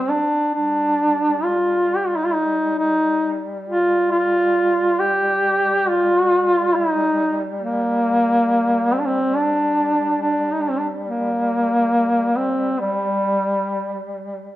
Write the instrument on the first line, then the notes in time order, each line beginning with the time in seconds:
duduk
Already playing: G3 C4
0.09 D4
0.53 G3 D4
1.44 F4
1.97 G4
2.07 F4
2.16 D#4
2.25 F4
2.33 D#4
2.79 D#4
3.69 F4
4.11 F4
5.00 G4
5.88 F4
6.75 D#4
7.61 A#3
8.93 C4
8.99 D4
9.06 C4
9.35 D4
10.21 D4
10.53 D#4
10.61 D4
10.70 C4
10.79 D4
11.07 A#3
12.36 C4
12.80 G3